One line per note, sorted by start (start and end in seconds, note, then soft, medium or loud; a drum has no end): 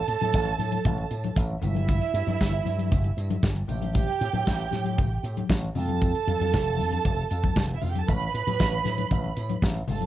0.00 1.34 A4 medium
0.00 1.34 A5 loud
0.08 0.17 A2 medium
0.08 closed hi-hat medium
0.08 tambourine soft
0.21 0.30 A2 medium
0.21 closed hi-hat soft
0.21 high conga medium
0.32 0.52 A1 loud
0.32 kick loud
0.32 closed hi-hat medium
0.32 tambourine loud
0.32 muted conga soft
0.46 closed hi-hat soft
0.46 muted conga soft
0.58 0.77 A2 medium
0.58 closed hi-hat soft
0.58 tambourine soft
0.58 high conga medium
0.72 closed hi-hat soft
0.72 high conga medium
0.85 1.04 A1 medium
0.85 kick medium
0.85 closed hi-hat medium
0.85 low conga medium
0.98 closed hi-hat soft
1.11 1.29 A2 medium
1.11 closed hi-hat medium
1.11 tambourine medium
1.24 closed hi-hat soft
1.24 high conga medium
1.36 1.55 A1 loud
1.36 kick loud
1.36 closed hi-hat medium
1.36 tambourine medium
1.51 muted conga soft
1.62 1.99 G1 medium
1.62 3.40 E4 medium
1.62 3.40 E5 loud
1.62 closed hi-hat soft
1.62 tambourine medium
1.62 low conga medium
1.75 closed hi-hat soft
1.75 high conga medium
1.88 kick medium
1.88 closed hi-hat medium
1.88 tambourine soft
1.88 muted conga soft
1.88 low conga medium
2.02 closed hi-hat soft
2.02 muted conga soft
2.14 2.23 G2 medium
2.14 closed hi-hat medium
2.14 tambourine soft
2.27 2.36 G2 medium
2.27 closed hi-hat soft
2.27 high conga medium
2.40 2.59 G1 medium
2.40 kick medium
2.40 snare loud
2.40 tambourine loud
2.52 muted conga soft
2.65 2.93 G2 medium
2.65 closed hi-hat soft
2.65 tambourine soft
2.65 high conga medium
2.79 closed hi-hat soft
2.79 high conga medium
2.91 3.10 G1 medium
2.91 kick medium
2.91 closed hi-hat medium
2.91 tambourine soft
2.91 muted conga soft
2.91 low conga medium
3.04 closed hi-hat soft
3.04 muted conga soft
3.17 3.36 G2 medium
3.17 closed hi-hat medium
3.17 tambourine medium
3.30 closed hi-hat soft
3.30 high conga medium
3.43 3.62 G1 medium
3.43 kick loud
3.43 snare loud
3.43 tambourine medium
3.43 muted conga soft
3.56 closed hi-hat soft
3.68 4.06 A1 medium
3.68 5.46 G4 medium
3.68 5.47 G5 loud
3.68 closed hi-hat soft
3.68 tambourine medium
3.68 low conga medium
3.82 closed hi-hat soft
3.82 high conga medium
3.95 kick medium
3.95 closed hi-hat medium
3.95 tambourine medium
3.95 muted conga soft
3.95 low conga medium
4.08 closed hi-hat soft
4.08 muted conga soft
4.21 4.30 A2 medium
4.21 closed hi-hat medium
4.21 tambourine soft
4.33 4.43 A2 medium
4.33 closed hi-hat soft
4.33 high conga medium
4.46 4.65 A1 medium
4.46 kick medium
4.46 snare loud
4.46 tambourine medium
4.46 muted conga soft
4.58 closed hi-hat soft
4.58 muted conga soft
4.71 5.00 A2 medium
4.71 snare soft
4.71 closed hi-hat medium
4.71 tambourine soft
4.71 high conga medium
4.84 closed hi-hat soft
4.84 high conga medium
4.98 5.17 A1 medium
4.98 kick loud
4.98 closed hi-hat medium
4.98 tambourine soft
4.98 muted conga soft
4.98 low conga medium
5.23 5.42 A2 medium
5.23 closed hi-hat medium
5.23 tambourine medium
5.37 closed hi-hat soft
5.37 high conga medium
5.50 5.68 A1 medium
5.50 kick loud
5.50 snare loud
5.50 tambourine medium
5.63 closed hi-hat soft
5.63 muted conga soft
5.75 6.12 F2 medium
5.75 7.65 A4 medium
5.75 7.65 A5 loud
5.75 open hi-hat soft
5.75 tambourine medium
5.75 low conga medium
5.88 closed hi-hat soft
5.88 high conga medium
6.01 kick loud
6.01 closed hi-hat medium
6.01 tambourine medium
6.01 muted conga soft
6.01 low conga medium
6.15 closed hi-hat soft
6.27 6.37 F2 loud
6.27 closed hi-hat medium
6.27 high conga medium
6.40 6.55 F2 medium
6.40 closed hi-hat soft
6.40 high conga medium
6.52 6.80 F1 medium
6.52 kick loud
6.52 snare medium
6.52 tambourine medium
6.52 muted conga soft
6.65 muted conga soft
6.77 6.97 F2 medium
6.77 open hi-hat medium
6.77 tambourine soft
6.77 high conga medium
6.92 closed hi-hat soft
6.92 high conga medium
7.05 7.23 F1 medium
7.05 kick medium
7.05 closed hi-hat medium
7.05 tambourine soft
7.05 muted conga soft
7.05 low conga medium
7.31 7.49 F2 medium
7.31 closed hi-hat medium
7.31 tambourine medium
7.43 kick medium
7.43 closed hi-hat soft
7.43 high conga medium
7.56 7.75 F1 loud
7.56 kick loud
7.56 snare loud
7.56 tambourine medium
7.69 closed hi-hat soft
7.69 muted conga soft
7.75 7.83 E4 soft
7.75 7.83 E5 medium
7.82 8.01 F2 medium
7.82 7.91 F4 medium
7.82 7.91 F5 medium
7.82 open hi-hat medium
7.82 tambourine medium
7.82 low conga medium
7.91 8.00 G4 medium
7.91 8.00 G5 medium
7.95 closed hi-hat soft
7.95 high conga medium
8.00 8.09 A4 medium
8.00 8.09 A5 medium
8.08 8.27 A1 loud
8.08 9.60 B4 medium
8.08 9.60 B5 medium
8.08 kick medium
8.08 closed hi-hat medium
8.08 tambourine medium
8.08 low conga medium
8.22 muted conga soft
8.34 8.43 A2 medium
8.34 closed hi-hat medium
8.47 8.56 A2 medium
8.47 closed hi-hat soft
8.47 high conga medium
8.60 8.78 A1 medium
8.60 kick loud
8.60 snare loud
8.60 tambourine medium
8.72 muted conga soft
8.84 9.04 A2 medium
8.84 snare soft
8.84 closed hi-hat medium
8.84 tambourine soft
8.84 high conga medium
8.98 closed hi-hat soft
8.98 high conga medium
9.11 9.30 A1 medium
9.11 kick medium
9.11 closed hi-hat medium
9.11 tambourine soft
9.11 muted conga soft
9.11 low conga medium
9.24 muted conga soft
9.37 9.55 A2 medium
9.37 closed hi-hat medium
9.37 tambourine medium
9.49 closed hi-hat soft
9.49 high conga medium
9.62 9.81 A1 medium
9.62 kick loud
9.62 snare loud
9.62 tambourine medium
9.76 closed hi-hat soft
9.76 muted conga soft
9.88 10.06 G1 medium
9.88 10.06 A4 medium
9.88 10.06 A5 loud
9.88 open hi-hat medium
9.88 tambourine medium
9.88 low conga medium
10.01 closed hi-hat soft
10.01 high conga medium